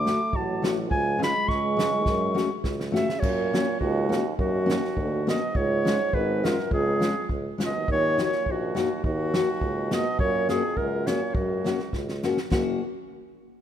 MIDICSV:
0, 0, Header, 1, 6, 480
1, 0, Start_track
1, 0, Key_signature, 3, "minor"
1, 0, Tempo, 579710
1, 751, Time_signature, 2, 2, 24, 8
1, 2670, Key_signature, 6, "major"
1, 11272, End_track
2, 0, Start_track
2, 0, Title_t, "Clarinet"
2, 0, Program_c, 0, 71
2, 0, Note_on_c, 0, 86, 93
2, 297, Note_on_c, 0, 81, 73
2, 310, Note_off_c, 0, 86, 0
2, 539, Note_off_c, 0, 81, 0
2, 753, Note_on_c, 0, 80, 100
2, 987, Note_off_c, 0, 80, 0
2, 1021, Note_on_c, 0, 83, 99
2, 1230, Note_on_c, 0, 85, 89
2, 1242, Note_off_c, 0, 83, 0
2, 2187, Note_off_c, 0, 85, 0
2, 2446, Note_on_c, 0, 76, 81
2, 2646, Note_on_c, 0, 73, 96
2, 2658, Note_off_c, 0, 76, 0
2, 3141, Note_off_c, 0, 73, 0
2, 3147, Note_on_c, 0, 66, 84
2, 3597, Note_off_c, 0, 66, 0
2, 3647, Note_on_c, 0, 66, 92
2, 4340, Note_off_c, 0, 66, 0
2, 4382, Note_on_c, 0, 75, 82
2, 4605, Note_on_c, 0, 73, 100
2, 4617, Note_off_c, 0, 75, 0
2, 5084, Note_on_c, 0, 71, 86
2, 5096, Note_off_c, 0, 73, 0
2, 5341, Note_on_c, 0, 70, 73
2, 5353, Note_off_c, 0, 71, 0
2, 5562, Note_off_c, 0, 70, 0
2, 5575, Note_on_c, 0, 68, 86
2, 6035, Note_off_c, 0, 68, 0
2, 6335, Note_on_c, 0, 75, 80
2, 6528, Note_off_c, 0, 75, 0
2, 6555, Note_on_c, 0, 73, 105
2, 6780, Note_off_c, 0, 73, 0
2, 6830, Note_on_c, 0, 73, 90
2, 7047, Note_on_c, 0, 66, 75
2, 7060, Note_off_c, 0, 73, 0
2, 7491, Note_off_c, 0, 66, 0
2, 7496, Note_on_c, 0, 66, 93
2, 8224, Note_on_c, 0, 75, 82
2, 8236, Note_off_c, 0, 66, 0
2, 8438, Note_off_c, 0, 75, 0
2, 8443, Note_on_c, 0, 73, 99
2, 8677, Note_off_c, 0, 73, 0
2, 8689, Note_on_c, 0, 68, 85
2, 8917, Note_on_c, 0, 70, 83
2, 8929, Note_off_c, 0, 68, 0
2, 9164, Note_on_c, 0, 73, 75
2, 9177, Note_off_c, 0, 70, 0
2, 9391, Note_on_c, 0, 66, 76
2, 9403, Note_off_c, 0, 73, 0
2, 9877, Note_off_c, 0, 66, 0
2, 11272, End_track
3, 0, Start_track
3, 0, Title_t, "Steel-string acoustic guitar"
3, 0, Program_c, 1, 25
3, 43, Note_on_c, 1, 57, 60
3, 54, Note_on_c, 1, 62, 58
3, 59, Note_on_c, 1, 66, 73
3, 148, Note_off_c, 1, 57, 0
3, 154, Note_off_c, 1, 62, 0
3, 156, Note_off_c, 1, 66, 0
3, 517, Note_on_c, 1, 57, 64
3, 523, Note_on_c, 1, 62, 61
3, 529, Note_on_c, 1, 66, 72
3, 623, Note_off_c, 1, 57, 0
3, 626, Note_off_c, 1, 62, 0
3, 629, Note_off_c, 1, 66, 0
3, 980, Note_on_c, 1, 56, 68
3, 986, Note_on_c, 1, 65, 80
3, 992, Note_on_c, 1, 61, 57
3, 1092, Note_off_c, 1, 56, 0
3, 1095, Note_off_c, 1, 65, 0
3, 1098, Note_off_c, 1, 61, 0
3, 1463, Note_on_c, 1, 56, 78
3, 1476, Note_on_c, 1, 61, 68
3, 1479, Note_on_c, 1, 65, 76
3, 1571, Note_off_c, 1, 56, 0
3, 1578, Note_off_c, 1, 61, 0
3, 1578, Note_off_c, 1, 65, 0
3, 1939, Note_on_c, 1, 57, 76
3, 1944, Note_on_c, 1, 61, 76
3, 1949, Note_on_c, 1, 66, 84
3, 2051, Note_off_c, 1, 57, 0
3, 2053, Note_off_c, 1, 61, 0
3, 2056, Note_off_c, 1, 66, 0
3, 2415, Note_on_c, 1, 57, 79
3, 2421, Note_on_c, 1, 61, 66
3, 2431, Note_on_c, 1, 66, 88
3, 2532, Note_off_c, 1, 57, 0
3, 2535, Note_off_c, 1, 61, 0
3, 2539, Note_off_c, 1, 66, 0
3, 2924, Note_on_c, 1, 58, 62
3, 2926, Note_on_c, 1, 61, 62
3, 2930, Note_on_c, 1, 66, 79
3, 3027, Note_off_c, 1, 61, 0
3, 3028, Note_off_c, 1, 58, 0
3, 3030, Note_off_c, 1, 66, 0
3, 3386, Note_on_c, 1, 58, 70
3, 3389, Note_on_c, 1, 61, 57
3, 3394, Note_on_c, 1, 66, 72
3, 3499, Note_off_c, 1, 58, 0
3, 3500, Note_off_c, 1, 61, 0
3, 3501, Note_off_c, 1, 66, 0
3, 3857, Note_on_c, 1, 58, 70
3, 3861, Note_on_c, 1, 61, 70
3, 3871, Note_on_c, 1, 66, 74
3, 3974, Note_off_c, 1, 58, 0
3, 3975, Note_off_c, 1, 61, 0
3, 3980, Note_off_c, 1, 66, 0
3, 4363, Note_on_c, 1, 58, 71
3, 4367, Note_on_c, 1, 61, 67
3, 4374, Note_on_c, 1, 66, 79
3, 4466, Note_off_c, 1, 58, 0
3, 4468, Note_off_c, 1, 61, 0
3, 4471, Note_off_c, 1, 66, 0
3, 4842, Note_on_c, 1, 56, 76
3, 4846, Note_on_c, 1, 61, 65
3, 4853, Note_on_c, 1, 65, 72
3, 4947, Note_off_c, 1, 56, 0
3, 4947, Note_off_c, 1, 61, 0
3, 4952, Note_off_c, 1, 65, 0
3, 5329, Note_on_c, 1, 56, 64
3, 5336, Note_on_c, 1, 61, 63
3, 5340, Note_on_c, 1, 65, 80
3, 5432, Note_off_c, 1, 56, 0
3, 5435, Note_off_c, 1, 61, 0
3, 5437, Note_off_c, 1, 65, 0
3, 5795, Note_on_c, 1, 56, 62
3, 5801, Note_on_c, 1, 61, 53
3, 5806, Note_on_c, 1, 65, 71
3, 5906, Note_off_c, 1, 56, 0
3, 5909, Note_off_c, 1, 61, 0
3, 5912, Note_off_c, 1, 65, 0
3, 6277, Note_on_c, 1, 56, 57
3, 6278, Note_on_c, 1, 61, 54
3, 6290, Note_on_c, 1, 65, 69
3, 6389, Note_off_c, 1, 61, 0
3, 6390, Note_off_c, 1, 56, 0
3, 6396, Note_off_c, 1, 65, 0
3, 6769, Note_on_c, 1, 58, 63
3, 6773, Note_on_c, 1, 63, 51
3, 6783, Note_on_c, 1, 66, 66
3, 6877, Note_off_c, 1, 58, 0
3, 6879, Note_off_c, 1, 63, 0
3, 6884, Note_off_c, 1, 66, 0
3, 7243, Note_on_c, 1, 58, 69
3, 7253, Note_on_c, 1, 63, 66
3, 7260, Note_on_c, 1, 66, 74
3, 7353, Note_off_c, 1, 58, 0
3, 7358, Note_off_c, 1, 63, 0
3, 7362, Note_off_c, 1, 66, 0
3, 7736, Note_on_c, 1, 58, 69
3, 7741, Note_on_c, 1, 63, 60
3, 7751, Note_on_c, 1, 66, 75
3, 7838, Note_off_c, 1, 58, 0
3, 7840, Note_off_c, 1, 63, 0
3, 7845, Note_off_c, 1, 66, 0
3, 8207, Note_on_c, 1, 58, 67
3, 8214, Note_on_c, 1, 63, 56
3, 8222, Note_on_c, 1, 66, 68
3, 8311, Note_off_c, 1, 58, 0
3, 8315, Note_off_c, 1, 63, 0
3, 8319, Note_off_c, 1, 66, 0
3, 8683, Note_on_c, 1, 58, 78
3, 8690, Note_on_c, 1, 61, 57
3, 8700, Note_on_c, 1, 66, 79
3, 8788, Note_off_c, 1, 58, 0
3, 8792, Note_off_c, 1, 61, 0
3, 8797, Note_off_c, 1, 66, 0
3, 9164, Note_on_c, 1, 58, 67
3, 9170, Note_on_c, 1, 61, 57
3, 9173, Note_on_c, 1, 66, 85
3, 9270, Note_off_c, 1, 58, 0
3, 9272, Note_off_c, 1, 61, 0
3, 9274, Note_off_c, 1, 66, 0
3, 9641, Note_on_c, 1, 58, 61
3, 9645, Note_on_c, 1, 61, 64
3, 9657, Note_on_c, 1, 66, 75
3, 9750, Note_off_c, 1, 58, 0
3, 9751, Note_off_c, 1, 61, 0
3, 9757, Note_off_c, 1, 66, 0
3, 10131, Note_on_c, 1, 58, 77
3, 10137, Note_on_c, 1, 61, 72
3, 10145, Note_on_c, 1, 66, 91
3, 10236, Note_off_c, 1, 58, 0
3, 10240, Note_off_c, 1, 61, 0
3, 10243, Note_off_c, 1, 66, 0
3, 10359, Note_on_c, 1, 61, 61
3, 10365, Note_on_c, 1, 58, 74
3, 10369, Note_on_c, 1, 66, 88
3, 10599, Note_off_c, 1, 61, 0
3, 10603, Note_off_c, 1, 58, 0
3, 10604, Note_off_c, 1, 66, 0
3, 11272, End_track
4, 0, Start_track
4, 0, Title_t, "Euphonium"
4, 0, Program_c, 2, 58
4, 0, Note_on_c, 2, 57, 73
4, 297, Note_on_c, 2, 54, 85
4, 309, Note_off_c, 2, 57, 0
4, 539, Note_off_c, 2, 54, 0
4, 743, Note_on_c, 2, 53, 71
4, 982, Note_off_c, 2, 53, 0
4, 998, Note_on_c, 2, 56, 82
4, 1218, Note_off_c, 2, 56, 0
4, 1218, Note_on_c, 2, 56, 109
4, 2181, Note_off_c, 2, 56, 0
4, 2419, Note_on_c, 2, 49, 74
4, 2663, Note_on_c, 2, 46, 89
4, 2675, Note_off_c, 2, 49, 0
4, 3149, Note_off_c, 2, 46, 0
4, 3154, Note_on_c, 2, 39, 100
4, 3601, Note_off_c, 2, 39, 0
4, 3623, Note_on_c, 2, 39, 77
4, 4328, Note_off_c, 2, 39, 0
4, 4355, Note_on_c, 2, 47, 69
4, 4561, Note_on_c, 2, 44, 85
4, 4574, Note_off_c, 2, 47, 0
4, 5057, Note_off_c, 2, 44, 0
4, 5057, Note_on_c, 2, 44, 89
4, 5332, Note_on_c, 2, 42, 76
4, 5344, Note_off_c, 2, 44, 0
4, 5557, Note_off_c, 2, 42, 0
4, 5570, Note_on_c, 2, 41, 73
4, 6032, Note_off_c, 2, 41, 0
4, 6320, Note_on_c, 2, 47, 61
4, 6521, Note_off_c, 2, 47, 0
4, 6548, Note_on_c, 2, 46, 67
4, 6776, Note_off_c, 2, 46, 0
4, 6814, Note_on_c, 2, 46, 75
4, 7030, Note_on_c, 2, 39, 89
4, 7042, Note_off_c, 2, 46, 0
4, 7481, Note_off_c, 2, 39, 0
4, 7486, Note_on_c, 2, 39, 69
4, 8230, Note_on_c, 2, 47, 79
4, 8243, Note_off_c, 2, 39, 0
4, 8445, Note_off_c, 2, 47, 0
4, 8461, Note_on_c, 2, 46, 85
4, 8686, Note_off_c, 2, 46, 0
4, 8721, Note_on_c, 2, 41, 76
4, 8916, Note_on_c, 2, 42, 91
4, 8928, Note_off_c, 2, 41, 0
4, 9182, Note_on_c, 2, 46, 78
4, 9194, Note_off_c, 2, 42, 0
4, 9395, Note_on_c, 2, 37, 64
4, 9407, Note_off_c, 2, 46, 0
4, 9879, Note_off_c, 2, 37, 0
4, 11272, End_track
5, 0, Start_track
5, 0, Title_t, "Tuba"
5, 0, Program_c, 3, 58
5, 0, Note_on_c, 3, 38, 106
5, 107, Note_off_c, 3, 38, 0
5, 272, Note_on_c, 3, 33, 95
5, 754, Note_on_c, 3, 37, 110
5, 767, Note_off_c, 3, 33, 0
5, 1062, Note_off_c, 3, 37, 0
5, 1225, Note_on_c, 3, 37, 98
5, 1703, Note_on_c, 3, 42, 115
5, 1715, Note_off_c, 3, 37, 0
5, 2016, Note_off_c, 3, 42, 0
5, 2184, Note_on_c, 3, 37, 87
5, 2500, Note_off_c, 3, 37, 0
5, 2671, Note_on_c, 3, 42, 98
5, 2984, Note_off_c, 3, 42, 0
5, 3151, Note_on_c, 3, 37, 104
5, 3464, Note_off_c, 3, 37, 0
5, 3634, Note_on_c, 3, 42, 103
5, 3945, Note_off_c, 3, 42, 0
5, 4114, Note_on_c, 3, 38, 102
5, 4425, Note_off_c, 3, 38, 0
5, 4596, Note_on_c, 3, 37, 104
5, 4908, Note_off_c, 3, 37, 0
5, 5080, Note_on_c, 3, 32, 114
5, 5392, Note_off_c, 3, 32, 0
5, 5560, Note_on_c, 3, 37, 111
5, 5873, Note_off_c, 3, 37, 0
5, 6039, Note_on_c, 3, 37, 88
5, 6207, Note_off_c, 3, 37, 0
5, 6304, Note_on_c, 3, 37, 79
5, 6403, Note_off_c, 3, 37, 0
5, 6424, Note_on_c, 3, 39, 71
5, 6517, Note_off_c, 3, 39, 0
5, 6522, Note_on_c, 3, 39, 107
5, 6836, Note_off_c, 3, 39, 0
5, 7008, Note_on_c, 3, 34, 91
5, 7318, Note_off_c, 3, 34, 0
5, 7481, Note_on_c, 3, 39, 104
5, 7792, Note_off_c, 3, 39, 0
5, 7963, Note_on_c, 3, 37, 87
5, 8272, Note_off_c, 3, 37, 0
5, 8437, Note_on_c, 3, 42, 99
5, 8748, Note_off_c, 3, 42, 0
5, 8917, Note_on_c, 3, 37, 90
5, 9230, Note_off_c, 3, 37, 0
5, 9397, Note_on_c, 3, 42, 98
5, 9711, Note_off_c, 3, 42, 0
5, 9879, Note_on_c, 3, 37, 80
5, 10194, Note_off_c, 3, 37, 0
5, 10364, Note_on_c, 3, 30, 92
5, 10602, Note_off_c, 3, 30, 0
5, 11272, End_track
6, 0, Start_track
6, 0, Title_t, "Drums"
6, 54, Note_on_c, 9, 38, 62
6, 54, Note_on_c, 9, 44, 31
6, 137, Note_off_c, 9, 38, 0
6, 137, Note_off_c, 9, 44, 0
6, 275, Note_on_c, 9, 36, 63
6, 357, Note_off_c, 9, 36, 0
6, 528, Note_on_c, 9, 38, 72
6, 528, Note_on_c, 9, 44, 37
6, 611, Note_off_c, 9, 38, 0
6, 611, Note_off_c, 9, 44, 0
6, 754, Note_on_c, 9, 36, 71
6, 837, Note_off_c, 9, 36, 0
6, 1014, Note_on_c, 9, 38, 62
6, 1014, Note_on_c, 9, 44, 37
6, 1097, Note_off_c, 9, 38, 0
6, 1097, Note_off_c, 9, 44, 0
6, 1230, Note_on_c, 9, 36, 61
6, 1240, Note_on_c, 9, 38, 21
6, 1312, Note_off_c, 9, 36, 0
6, 1323, Note_off_c, 9, 38, 0
6, 1484, Note_on_c, 9, 38, 81
6, 1484, Note_on_c, 9, 44, 44
6, 1566, Note_off_c, 9, 38, 0
6, 1566, Note_off_c, 9, 44, 0
6, 1705, Note_on_c, 9, 36, 71
6, 1705, Note_on_c, 9, 38, 44
6, 1788, Note_off_c, 9, 36, 0
6, 1788, Note_off_c, 9, 38, 0
6, 1966, Note_on_c, 9, 38, 42
6, 1966, Note_on_c, 9, 44, 43
6, 2048, Note_off_c, 9, 38, 0
6, 2048, Note_off_c, 9, 44, 0
6, 2187, Note_on_c, 9, 36, 60
6, 2188, Note_on_c, 9, 38, 64
6, 2270, Note_off_c, 9, 36, 0
6, 2271, Note_off_c, 9, 38, 0
6, 2319, Note_on_c, 9, 38, 54
6, 2402, Note_off_c, 9, 38, 0
6, 2445, Note_on_c, 9, 38, 60
6, 2445, Note_on_c, 9, 44, 41
6, 2528, Note_off_c, 9, 38, 0
6, 2528, Note_off_c, 9, 44, 0
6, 2561, Note_on_c, 9, 38, 64
6, 2644, Note_off_c, 9, 38, 0
6, 2672, Note_on_c, 9, 36, 83
6, 2678, Note_on_c, 9, 49, 68
6, 2755, Note_off_c, 9, 36, 0
6, 2760, Note_off_c, 9, 49, 0
6, 2931, Note_on_c, 9, 38, 59
6, 2931, Note_on_c, 9, 44, 32
6, 3014, Note_off_c, 9, 38, 0
6, 3014, Note_off_c, 9, 44, 0
6, 3154, Note_on_c, 9, 36, 53
6, 3237, Note_off_c, 9, 36, 0
6, 3412, Note_on_c, 9, 38, 72
6, 3412, Note_on_c, 9, 44, 35
6, 3495, Note_off_c, 9, 38, 0
6, 3495, Note_off_c, 9, 44, 0
6, 3634, Note_on_c, 9, 36, 73
6, 3717, Note_off_c, 9, 36, 0
6, 3887, Note_on_c, 9, 38, 70
6, 3887, Note_on_c, 9, 44, 34
6, 3970, Note_off_c, 9, 38, 0
6, 3970, Note_off_c, 9, 44, 0
6, 4011, Note_on_c, 9, 38, 25
6, 4093, Note_off_c, 9, 38, 0
6, 4114, Note_on_c, 9, 36, 55
6, 4197, Note_off_c, 9, 36, 0
6, 4375, Note_on_c, 9, 38, 75
6, 4375, Note_on_c, 9, 44, 43
6, 4458, Note_off_c, 9, 38, 0
6, 4458, Note_off_c, 9, 44, 0
6, 4596, Note_on_c, 9, 36, 74
6, 4679, Note_off_c, 9, 36, 0
6, 4856, Note_on_c, 9, 38, 74
6, 4856, Note_on_c, 9, 44, 40
6, 4938, Note_off_c, 9, 38, 0
6, 4938, Note_off_c, 9, 44, 0
6, 5079, Note_on_c, 9, 36, 64
6, 5161, Note_off_c, 9, 36, 0
6, 5338, Note_on_c, 9, 38, 80
6, 5338, Note_on_c, 9, 44, 46
6, 5421, Note_off_c, 9, 38, 0
6, 5421, Note_off_c, 9, 44, 0
6, 5450, Note_on_c, 9, 38, 25
6, 5533, Note_off_c, 9, 38, 0
6, 5558, Note_on_c, 9, 36, 77
6, 5641, Note_off_c, 9, 36, 0
6, 5809, Note_on_c, 9, 38, 61
6, 5809, Note_on_c, 9, 44, 36
6, 5892, Note_off_c, 9, 38, 0
6, 5892, Note_off_c, 9, 44, 0
6, 6040, Note_on_c, 9, 36, 63
6, 6122, Note_off_c, 9, 36, 0
6, 6293, Note_on_c, 9, 38, 65
6, 6293, Note_on_c, 9, 44, 43
6, 6376, Note_off_c, 9, 38, 0
6, 6376, Note_off_c, 9, 44, 0
6, 6526, Note_on_c, 9, 36, 70
6, 6609, Note_off_c, 9, 36, 0
6, 6774, Note_on_c, 9, 38, 58
6, 6774, Note_on_c, 9, 44, 33
6, 6857, Note_off_c, 9, 38, 0
6, 6857, Note_off_c, 9, 44, 0
6, 6891, Note_on_c, 9, 38, 25
6, 6974, Note_off_c, 9, 38, 0
6, 7008, Note_on_c, 9, 36, 51
6, 7090, Note_off_c, 9, 36, 0
6, 7254, Note_on_c, 9, 38, 76
6, 7254, Note_on_c, 9, 44, 33
6, 7337, Note_off_c, 9, 38, 0
6, 7337, Note_off_c, 9, 44, 0
6, 7485, Note_on_c, 9, 36, 69
6, 7568, Note_off_c, 9, 36, 0
6, 7732, Note_on_c, 9, 38, 72
6, 7732, Note_on_c, 9, 44, 30
6, 7814, Note_off_c, 9, 38, 0
6, 7814, Note_off_c, 9, 44, 0
6, 7961, Note_on_c, 9, 36, 58
6, 8043, Note_off_c, 9, 36, 0
6, 8207, Note_on_c, 9, 38, 76
6, 8207, Note_on_c, 9, 44, 41
6, 8290, Note_off_c, 9, 38, 0
6, 8290, Note_off_c, 9, 44, 0
6, 8438, Note_on_c, 9, 36, 84
6, 8521, Note_off_c, 9, 36, 0
6, 8684, Note_on_c, 9, 38, 54
6, 8684, Note_on_c, 9, 44, 36
6, 8767, Note_off_c, 9, 38, 0
6, 8767, Note_off_c, 9, 44, 0
6, 8915, Note_on_c, 9, 36, 52
6, 8998, Note_off_c, 9, 36, 0
6, 9165, Note_on_c, 9, 38, 70
6, 9165, Note_on_c, 9, 44, 45
6, 9247, Note_off_c, 9, 38, 0
6, 9247, Note_off_c, 9, 44, 0
6, 9395, Note_on_c, 9, 36, 78
6, 9477, Note_off_c, 9, 36, 0
6, 9651, Note_on_c, 9, 38, 54
6, 9651, Note_on_c, 9, 44, 34
6, 9733, Note_off_c, 9, 38, 0
6, 9733, Note_off_c, 9, 44, 0
6, 9762, Note_on_c, 9, 38, 24
6, 9844, Note_off_c, 9, 38, 0
6, 9878, Note_on_c, 9, 36, 48
6, 9880, Note_on_c, 9, 38, 49
6, 9961, Note_off_c, 9, 36, 0
6, 9963, Note_off_c, 9, 38, 0
6, 10007, Note_on_c, 9, 38, 47
6, 10090, Note_off_c, 9, 38, 0
6, 10126, Note_on_c, 9, 38, 57
6, 10126, Note_on_c, 9, 44, 40
6, 10208, Note_off_c, 9, 38, 0
6, 10208, Note_off_c, 9, 44, 0
6, 10245, Note_on_c, 9, 38, 58
6, 10328, Note_off_c, 9, 38, 0
6, 10363, Note_on_c, 9, 36, 78
6, 10363, Note_on_c, 9, 38, 64
6, 10446, Note_off_c, 9, 36, 0
6, 10446, Note_off_c, 9, 38, 0
6, 11272, End_track
0, 0, End_of_file